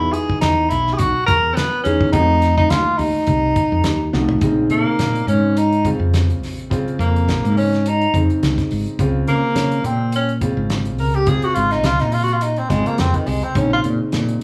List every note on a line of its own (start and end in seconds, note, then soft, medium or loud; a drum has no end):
0.00 0.11 E2 loud
0.00 0.93 E3 medium
0.00 0.93 G#3 medium
0.00 0.93 D#4 medium
0.00 0.14 E4 loud
0.00 0.93 F#4 medium
0.12 0.40 G#4 medium
0.12 closed hi-hat medium
0.30 kick medium
0.41 0.68 E2 medium
0.41 0.71 D#4 medium
0.41 snare loud
0.41 closed hi-hat medium
0.69 0.97 B1 medium
0.69 0.94 E4 medium
0.69 closed hi-hat medium
0.87 snare soft
0.93 0.99 G#4 medium
0.98 1.13 B1 medium
0.98 1.26 F#4 loud
0.98 kick medium
0.98 closed hi-hat medium
1.15 muted fretless electric bass stroke soft
1.26 1.53 E2 medium
1.26 1.57 A#4 loud
1.26 kick medium
1.26 closed hi-hat medium
1.55 1.83 B3 medium
1.55 snare loud
1.55 closed hi-hat medium
1.83 2.11 E2 medium
1.83 2.12 E3 medium
1.83 2.12 G#3 medium
1.83 2.11 C#4 medium
1.83 2.12 D#4 medium
1.83 2.12 G#4 medium
1.83 closed hi-hat medium
2.01 kick medium
2.12 2.64 F2 loud
2.12 3.21 F3 medium
2.12 3.21 A3 medium
2.12 2.54 D#4 medium
2.12 3.22 D#4 medium
2.12 3.22 F#4 medium
2.12 kick loud
2.12 closed hi-hat medium
2.42 snare soft
2.42 closed hi-hat medium
2.57 2.71 D#4 medium
2.57 kick medium
2.70 2.84 D#2 medium
2.70 2.99 F4 medium
2.70 snare loud
2.70 closed hi-hat medium
2.98 3.13 D#2 medium
2.98 4.13 D#4 medium
2.98 open hi-hat medium
3.14 muted fretless electric bass stroke soft
3.27 3.53 C2 medium
3.27 kick medium
3.27 closed hi-hat medium
3.56 kick medium
3.56 closed hi-hat medium
3.72 3.83 F2 medium
3.84 4.11 D#2 medium
3.84 snare loud
3.84 closed hi-hat medium
4.13 4.39 C2 medium
4.13 4.40 F3 medium
4.13 4.40 A3 medium
4.13 4.40 D#4 medium
4.13 4.41 F#4 medium
4.13 snare medium
4.29 floor tom medium
4.41 4.67 A#1 medium
4.41 5.50 C#3 medium
4.41 5.50 G#3 medium
4.41 5.50 C4 medium
4.41 5.50 D#4 medium
4.41 kick loud
4.41 closed hi-hat medium
4.70 4.84 A#2 medium
4.70 5.24 A#3 medium
4.70 closed hi-hat medium
4.99 5.24 A#2 medium
4.99 snare medium
4.99 closed hi-hat medium
5.15 closed hi-hat soft
5.27 5.91 G#2 medium
5.27 5.59 C#4 medium
5.27 closed hi-hat medium
5.57 5.86 D#4 medium
5.57 closed hi-hat medium
5.72 closed hi-hat soft
5.85 6.65 C#3 medium
5.85 6.66 G#3 medium
5.85 6.66 C4 medium
5.85 6.66 F4 medium
5.85 kick medium
5.85 closed hi-hat medium
6.00 6.43 F2 medium
6.14 snare medium
6.14 closed hi-hat medium
6.30 closed hi-hat soft
6.43 6.81 A#1 medium
6.43 snare soft
6.43 open hi-hat medium
6.59 closed hi-hat soft
6.70 7.78 C#3 medium
6.70 7.78 G#3 medium
6.70 7.78 C4 medium
6.70 7.78 F4 medium
6.70 kick loud
6.70 closed hi-hat medium
6.87 muted fretless electric bass stroke soft
6.87 closed hi-hat soft
6.99 7.29 F2 medium
6.99 7.53 A#3 medium
6.99 closed hi-hat medium
7.16 closed hi-hat soft
7.28 7.41 A#1 medium
7.28 snare loud
7.28 closed hi-hat medium
7.44 8.05 G#2 medium
7.44 closed hi-hat soft
7.57 7.89 C#4 medium
7.57 open hi-hat medium
7.73 snare soft
7.73 closed hi-hat soft
7.86 8.15 D#4 medium
7.86 closed hi-hat medium
8.01 closed hi-hat soft
8.13 8.27 F2 medium
8.13 8.94 C#3 medium
8.13 8.94 G#3 medium
8.13 8.94 C4 medium
8.13 8.94 D#4 medium
8.13 kick medium
8.13 closed hi-hat medium
8.29 muted fretless electric bass stroke soft
8.29 closed hi-hat soft
8.43 8.56 C#2 medium
8.43 snare loud
8.43 closed hi-hat medium
8.58 kick medium
8.58 snare soft
8.58 closed hi-hat soft
8.71 8.85 G#1 medium
8.71 open hi-hat medium
8.86 closed hi-hat soft
8.99 9.24 C#2 medium
8.99 10.07 C#3 medium
8.99 10.07 G#3 medium
8.99 10.07 C4 medium
8.99 10.07 F4 medium
8.99 kick loud
8.99 closed hi-hat medium
9.27 9.41 C#3 medium
9.27 9.86 A#3 medium
9.27 closed hi-hat medium
9.55 9.81 C#3 medium
9.55 snare loud
9.55 closed hi-hat medium
9.72 closed hi-hat soft
9.84 10.48 A#2 medium
9.84 10.13 C4 medium
9.84 closed hi-hat medium
10.12 10.32 C#4 medium
10.12 closed hi-hat medium
10.29 closed hi-hat soft
10.41 11.22 C#3 medium
10.41 11.22 G#3 medium
10.41 11.22 C4 medium
10.41 11.22 F4 medium
10.41 kick medium
10.41 closed hi-hat medium
10.57 10.99 G#1 medium
10.70 snare loud
10.70 closed hi-hat medium
10.85 closed hi-hat soft
10.98 11.37 C#2 medium
10.98 11.17 A#4 medium
10.98 open hi-hat medium
11.14 11.30 G4 medium
11.14 closed hi-hat soft
11.26 12.35 C#3 medium
11.26 12.34 G#3 medium
11.26 12.35 C4 medium
11.26 12.35 F4 medium
11.26 11.46 G#4 medium
11.26 kick loud
11.26 closed hi-hat medium
11.42 11.56 F#4 medium
11.42 muted fretless electric bass stroke soft
11.42 closed hi-hat soft
11.55 11.85 G#1 medium
11.55 11.73 F4 medium
11.55 closed hi-hat medium
11.71 11.87 D#4 medium
11.71 snare soft
11.71 closed hi-hat soft
11.84 11.98 C#2 medium
11.84 12.02 F4 medium
11.84 snare loud
11.84 closed hi-hat medium
11.99 12.62 A#2 medium
11.99 12.14 D#4 medium
11.99 snare soft
11.99 closed hi-hat soft
12.12 12.25 F4 medium
12.12 open hi-hat medium
12.24 12.35 F#4 medium
12.28 closed hi-hat soft
12.33 12.44 F4 medium
12.41 12.60 D#4 medium
12.41 closed hi-hat medium
12.56 12.71 C4 medium
12.56 closed hi-hat soft
12.69 12.84 G#1 medium
12.69 13.50 C#3 medium
12.69 12.89 G#3 medium
12.69 13.50 G#3 medium
12.69 13.51 C4 medium
12.69 13.51 F4 medium
12.69 kick medium
12.69 snare soft
12.69 closed hi-hat medium
12.86 13.01 A#3 medium
12.86 muted fretless electric bass stroke soft
12.86 closed hi-hat soft
12.98 13.13 F2 medium
12.98 13.17 C4 medium
12.98 snare loud
12.98 closed hi-hat medium
13.14 13.29 D#3 medium
13.14 kick medium
13.14 closed hi-hat soft
13.27 13.41 C2 medium
13.27 13.45 G#3 medium
13.27 open hi-hat medium
13.43 13.58 C4 medium
13.43 closed hi-hat soft
13.55 13.80 A#1 medium
13.55 14.43 C#3 medium
13.55 14.43 G#3 medium
13.55 14.43 C4 medium
13.55 13.72 C#4 medium
13.55 14.43 D#4 medium
13.55 kick loud
13.55 closed hi-hat medium
13.73 13.80 F4 medium
13.84 13.98 A#2 medium
13.84 closed hi-hat medium
14.12 14.38 A#2 medium
14.12 snare loud
14.12 closed hi-hat medium
14.29 closed hi-hat soft